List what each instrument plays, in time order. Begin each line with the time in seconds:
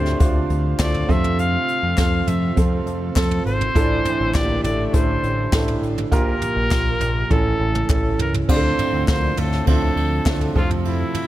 Already playing: analog synth bass D2, french horn section A2 A3, grand piano A2 D4 F4 G4 C5, analog synth pad D3 C4 F4, trumpet C5
0.06 snare
0.20 analog synth bass D2, grand piano D4 F4 C5, kick, closed hi-hat
0.50 analog synth bass D2, closed hi-hat
0.79 analog synth bass D2, french horn section A2 A3, grand piano D4 F4 C5, trumpet D5, kick, snare, clap, closed hi-hat
0.94 floor tom
1.08 analog synth bass F2, grand piano C3 C4 F4 A4, analog synth pad C3 A3, trumpet E5, kick, closed hi-hat
1.24 floor tom
1.39 trumpet F5, closed hi-hat
1.68 closed hi-hat
1.83 analog synth bass F2
1.97 analog synth bass F2, grand piano C4 F4 A4, trumpet F5, kick, snare, clap, closed hi-hat
2.27 analog synth bass F2, trumpet E5, closed hi-hat, floor tom
2.56 analog synth bass F2, grand piano C4 F4 A4, kick, closed hi-hat
2.86 analog synth bass F2, closed hi-hat
3.16 analog synth bass F2, grand piano C4 F4 A4, trumpet A4, kick, snare, clap, closed hi-hat
3.31 floor tom
3.46 analog synth bass G#1, trumpet C5, closed hi-hat
3.61 floor tom
3.75 analog synth bass A1, grand piano A2 E3 D4 E4 A4, french horn section D3 D4, analog synth pad D3 E4, kick, closed hi-hat
4.05 french horn section C3 C4, closed hi-hat, floor tom
4.20 analog synth bass A1
4.34 analog synth bass A1, french horn section A#2 A#3, grand piano D4 E4 G4, trumpet D5, kick, snare, clap, closed hi-hat
4.64 analog synth bass A1, french horn section A2 A3, trumpet D5, closed hi-hat, floor tom
4.87 trumpet D5
4.93 analog synth bass A1, grand piano D4 E4 A4, trumpet C5, kick, closed hi-hat
5.23 analog synth bass A1, closed hi-hat
5.52 analog synth bass A1, french horn section A2 A3, grand piano D4 E4 A4, kick, snare, clap, closed hi-hat
5.68 floor tom
5.82 analog synth bass A1, closed hi-hat
5.98 floor tom
6.12 analog synth bass A#1, grand piano A#2 A#3 F4 G4 A#4, analog synth pad F3 A#3 G4, trumpet A#4, kick, closed hi-hat
6.42 closed hi-hat, floor tom
6.56 analog synth bass A#1
6.71 analog synth bass A#1, grand piano F4 G4 A#4, kick, snare, clap, closed hi-hat
7.00 analog synth bass A#1, closed hi-hat, floor tom
7.30 analog synth bass A1, grand piano A2 E3 C#4 E4 A4, analog synth pad C#3 A3 E4, trumpet A4, kick, high tom
7.60 analog synth bass A1
7.75 mid tom
7.89 analog synth bass A1, grand piano C#4 E4 A4, trumpet A4, kick, clap, mid tom
8.19 analog synth bass C#2, trumpet A#4, floor tom
8.34 floor tom
8.49 analog synth bass D2, grand piano A2 C4 D4 F4 G4, french horn section D3 D4, analog synth pad D3 F3 C4, trumpet C5, kick, crash
8.56 grand piano A4
8.79 french horn section C3 C4, floor tom, ride
8.93 analog synth bass D2
9.07 analog synth bass D2, french horn section A#2 A#3, grand piano C4 D4 F4 A4, trumpet C5, kick, snare, clap, ride
9.37 analog synth bass D2, french horn section A2 A3, trumpet A4, floor tom, ride
9.52 snare
9.66 analog synth bass D2, grand piano C4 D4 F4 C5, trumpet A4, kick, ride
9.96 analog synth bass D2, ride
10.26 analog synth bass D2, french horn section A2 A3, grand piano C4 D4 F4 A4, kick, snare, clap, ride
10.41 floor tom
10.55 analog synth bass F2, grand piano C3 F3 A3 C4 A4, analog synth pad C3 A3, trumpet F4, kick, ride
10.71 floor tom
10.85 trumpet E4, ride
11.15 floor tom, ride